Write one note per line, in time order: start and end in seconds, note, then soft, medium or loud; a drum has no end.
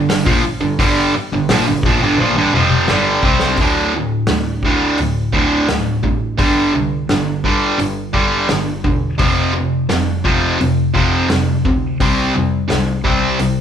0.09 0.25 G1 medium
0.09 0.25 G2 medium
0.09 0.26 D3 medium
0.09 snare loud
0.09 open hi-hat medium
0.26 0.43 A#1 medium
0.26 0.42 A#2 medium
0.26 0.43 F3 medium
0.26 kick loud
0.44 0.60 G1 soft
0.44 muted distorted electric guitar stroke medium
0.61 0.78 G1 medium
0.61 0.78 G2 medium
0.61 0.79 D3 medium
0.79 1.11 G1 loud
0.79 1.13 G2 medium
0.79 1.13 D3 loud
0.79 1.13 G3 medium
0.79 kick loud
0.79 open hi-hat medium
1.15 1.31 G1 soft
1.15 muted distorted electric guitar stroke medium
1.32 1.48 G1 medium
1.32 1.49 G2 medium
1.32 1.50 D3 medium
1.49 1.65 A#1 medium
1.49 1.65 A#2 medium
1.49 1.66 F3 loud
1.49 snare loud
1.49 open hi-hat medium
1.67 1.82 G1 medium
1.67 1.84 G2 medium
1.67 1.84 D3 medium
1.83 2.00 A#1 medium
1.83 2.01 A#2 medium
1.83 2.01 F3 loud
1.83 kick loud
2.01 2.17 G1 medium
2.01 2.18 G2 medium
2.01 2.19 D3 medium
2.18 2.35 A#1 medium
2.18 2.36 A#2 medium
2.18 2.36 F3 loud
2.18 high tom medium
2.35 2.52 G1 medium
2.35 2.53 G2 medium
2.35 2.53 D3 loud
2.53 2.86 F1 medium
2.53 2.88 F2 medium
2.53 2.88 C3 medium
2.53 2.89 F3 medium
2.53 mid tom medium
2.70 mid tom medium
2.88 3.21 G1 medium
2.88 3.23 G2 medium
2.88 3.23 D3 medium
2.88 3.23 G3 loud
2.88 snare medium
3.22 3.56 C2 medium
3.22 3.58 C3 medium
3.22 3.58 G3 medium
3.22 3.59 C4 medium
3.22 kick medium
3.40 snare medium
3.57 4.25 D2 medium
3.57 3.92 D2 medium
3.57 3.93 A2 medium
3.57 3.93 D3 medium
3.57 kick loud
3.57 open hi-hat soft
3.95 4.26 D2 medium
3.95 4.27 A2 medium
4.27 4.60 D2 medium
4.27 4.62 D2 medium
4.27 4.61 A2 medium
4.27 snare loud
4.27 open hi-hat soft
4.62 4.96 D2 medium
4.62 4.97 D2 medium
4.62 4.98 A2 medium
4.62 4.98 D3 medium
4.62 kick medium
4.98 5.32 D2 medium
4.98 5.31 D2 medium
4.98 5.31 A2 medium
4.98 open hi-hat soft
5.33 5.66 D2 medium
5.33 5.67 A2 medium
5.33 5.67 D3 medium
5.33 kick medium
5.68 6.00 D2 medium
5.68 6.02 D2 medium
5.68 6.00 A2 medium
5.68 snare loud
5.68 open hi-hat soft
6.03 6.37 A1 medium
6.03 6.35 D2 medium
6.03 6.36 A2 medium
6.03 kick medium
6.38 6.71 G1 medium
6.38 6.72 G2 medium
6.38 6.72 D3 medium
6.38 6.72 G3 medium
6.38 kick loud
6.38 open hi-hat soft
6.74 7.07 C2 medium
6.74 7.06 G2 medium
6.74 7.06 D3 medium
7.09 7.42 G1 medium
7.09 7.42 G2 medium
7.09 7.42 D3 medium
7.09 snare medium
7.09 open hi-hat soft
7.44 7.77 G2 medium
7.44 7.78 G2 medium
7.44 7.78 D3 medium
7.44 7.78 G3 medium
7.44 kick medium
7.79 8.12 G1 medium
7.79 8.11 G2 medium
7.79 8.11 D3 medium
7.79 open hi-hat soft
8.13 8.47 G1 medium
8.13 8.47 G2 medium
8.13 8.47 D3 medium
8.13 8.48 G3 medium
8.13 kick medium
8.48 8.82 G1 medium
8.48 8.81 G2 medium
8.48 8.81 D3 medium
8.48 snare loud
8.48 open hi-hat soft
8.84 9.17 E1 medium
8.84 9.16 G2 medium
8.84 9.16 D3 medium
8.84 kick medium
9.18 9.86 F1 medium
9.18 9.52 F2 medium
9.18 9.52 C3 medium
9.18 9.53 F3 loud
9.18 kick loud
9.18 open hi-hat soft
9.53 9.86 F2 medium
9.53 9.86 C3 medium
9.89 10.22 F1 medium
9.89 10.21 F2 medium
9.89 10.21 C3 medium
9.89 snare loud
9.89 open hi-hat soft
10.24 10.58 F1 medium
10.24 10.58 F2 medium
10.24 10.58 C3 medium
10.24 10.58 F3 medium
10.24 kick medium
10.59 10.93 F1 medium
10.59 10.91 F2 medium
10.59 10.92 C3 medium
10.59 open hi-hat soft
10.94 11.28 F1 medium
10.94 11.28 F2 medium
10.94 11.28 C3 medium
10.94 11.29 F3 medium
10.94 kick medium
11.29 11.63 F1 medium
11.29 11.61 F2 medium
11.29 11.62 C3 medium
11.29 snare loud
11.29 open hi-hat medium
11.65 11.98 D2 medium
11.65 11.97 F2 medium
11.65 11.97 C3 medium
11.65 kick medium
12.00 12.33 C2 medium
12.00 12.33 C3 medium
12.00 12.34 G3 medium
12.00 12.34 C4 medium
12.00 kick loud
12.00 open hi-hat soft
12.35 12.68 F1 medium
12.35 12.67 C3 medium
12.35 12.67 G3 medium
12.69 13.03 C2 medium
12.69 13.01 C3 medium
12.69 13.02 G3 medium
12.69 snare loud
12.69 open hi-hat soft
13.04 13.37 C2 medium
13.04 13.38 C3 medium
13.04 13.38 G3 medium
13.04 13.38 C4 medium
13.04 kick medium
13.39 13.61 C2 medium
13.39 13.61 C3 medium
13.39 13.61 G3 medium
13.39 open hi-hat soft